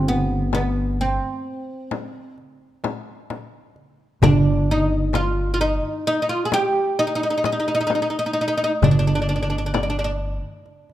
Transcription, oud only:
0.08 0.53 B3 medium
0.55 0.97 B3 medium
1.01 2.35 C4 medium
4.24 4.70 D4 medium
4.71 5.13 D#4 medium
5.15 5.53 F4 medium
5.54 5.60 F4 medium
5.61 6.06 D#4 medium
6.07 6.21 D#4 medium
6.22 6.29 D#4 medium
6.29 6.45 F4 medium
6.45 6.52 G#4 medium
6.54 6.96 G4 loud
6.99 7.06 D#4 medium
7.07 7.14 D#4 medium
7.15 7.22 D#4 medium
7.23 7.29 D#4 medium
7.30 7.36 D#4 medium
7.38 7.44 D#4 medium
7.45 7.51 D#4 medium
7.52 7.58 D#4 medium
7.60 7.67 D#4 medium
7.68 7.73 D#4 medium
7.75 7.79 D#4 medium
7.81 7.86 D#4 medium
7.87 7.94 D#4 medium
7.95 8.01 D#4 medium
8.02 8.09 D#4 medium
8.10 8.18 D#4 soft
8.19 8.25 D#4 medium
8.26 8.32 D#4 medium
8.33 8.40 D#4 medium
8.41 8.47 D#4 medium
8.48 8.56 D#4 medium
8.57 8.63 D#4 medium
8.64 8.71 D#4 medium
8.84 8.90 D4 medium
8.91 8.98 D4 medium
8.99 9.05 D4 medium
9.07 9.13 D4 medium
9.15 9.21 D4 medium
9.22 9.28 D4 soft
9.29 9.35 D4 medium
9.36 9.41 D4 soft
9.43 9.49 D4 medium
9.50 9.57 D4 soft
9.58 9.65 D4 soft
9.66 9.72 D4 soft
9.74 9.80 D4 medium
9.83 9.88 D4 soft
9.90 9.95 D4 soft
9.99 10.03 D4 soft
10.04 10.10 D4 medium

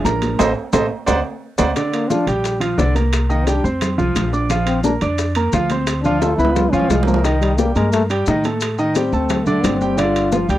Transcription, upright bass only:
0.05 0.37 A1 loud
0.40 0.52 A1 loud
0.73 0.86 A1 loud
1.08 1.20 D2 loud
1.59 1.72 D2 loud
2.27 2.75 A#1 medium
2.78 3.58 C2 medium
3.64 3.96 F2 medium
3.99 4.15 C2 medium
4.16 4.96 A#1 loud
5.02 5.50 F2 loud
5.53 6.33 D2 medium
6.38 6.70 C#2 medium
6.73 6.89 C#2 medium
6.90 7.70 C2 medium
7.75 8.23 G2 medium
8.27 9.07 A2 medium
9.12 9.60 D2 medium
9.64 10.44 G1 medium
10.49 10.59 D2 loud

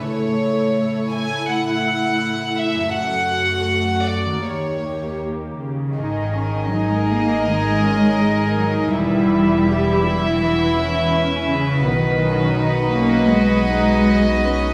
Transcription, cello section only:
0.03 2.89 A2 medium
2.92 4.40 F#2 medium
4.42 5.56 D#2 soft
5.59 5.95 C#3 soft
5.96 6.71 D#3 medium
6.71 6.90 F#3 medium
6.91 7.09 G#3 medium
7.09 7.46 A#3 medium
7.47 8.56 G#3 medium
8.57 8.93 F#3 medium
8.93 10.37 G3 medium
10.40 11.12 E3 medium
11.49 11.82 C#3 medium
11.85 12.95 D#3 medium
12.94 13.30 A#3 medium
13.31 14.74 G#3 medium

